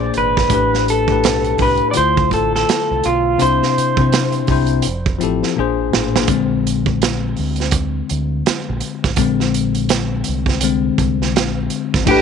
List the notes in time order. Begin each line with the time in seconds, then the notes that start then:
Already playing: A#2 A#3 D4 G#4 C5 D5
0.14 G#1 B4, closed hi-hat
0.37 kick, snare
0.49 A1 A2 A3 D4 G4, kick, closed hi-hat
0.54 B4
0.74 snare
0.88 A4, closed hi-hat
1.08 A2 A3 D4 G4, kick
1.12 B4
1.24 B1, snare, closed hi-hat
1.44 closed hi-hat
1.57 C2 A2 A3 D4 G4, kick, open hi-hat
1.62 B4
1.77 closed hi-hat
1.91 D3 A3 D5, closed hi-hat
1.95 D2 E4 F4 C5
2.17 kick
2.31 A1 A4, kick, closed hi-hat
2.55 A4, snare
2.69 snare, closed hi-hat
2.91 C2
3.04 B1 F4, closed hi-hat
3.38 C2 C3 C4 D4 E4 C5, closed hi-hat
3.42 C5
3.63 snare
3.78 muted fingered electric bass stroke, closed hi-hat
3.97 C3 C4 D4 E4, kick
4.01 C5
4.12 snare, closed hi-hat
4.32 closed hi-hat
4.47 C2 C3 C4 D4 E4, kick, open hi-hat
4.52 C5
4.67 closed hi-hat
4.82 F1, closed hi-hat
5.06 kick
5.19 A1 F3 C4 E4, closed hi-hat
5.23 G4 A4
5.43 snare
5.56 A#1 A#2 A#3 D4 G#4
5.60 C5
5.93 A1, snare
6.16 snare
6.28 A#1 D3 G#3 C4, kick, closed hi-hat
6.67 closed hi-hat
6.86 kick
7.02 snare, closed hi-hat
7.36 D2, open hi-hat
7.56 closed hi-hat
7.60 snare
7.71 kick, closed hi-hat
8.09 D2, closed hi-hat
8.46 snare, closed hi-hat
8.69 A#1
8.80 closed hi-hat
9.04 A1, kick, snare
9.16 A#1 D3 G#3 C4, kick, closed hi-hat
9.40 snare
9.54 closed hi-hat
9.75 closed hi-hat
9.89 snare, closed hi-hat
10.24 closed hi-hat
10.28 C2
10.46 kick, snare
10.61 D3 G#3 C4, closed hi-hat
10.98 C2, kick, closed hi-hat
11.22 snare
11.36 A#1, snare, closed hi-hat
11.70 closed hi-hat
11.94 G#1, kick, snare
12.06 A1 A2 G3 A3 D4 G4, kick, crash
12.11 B4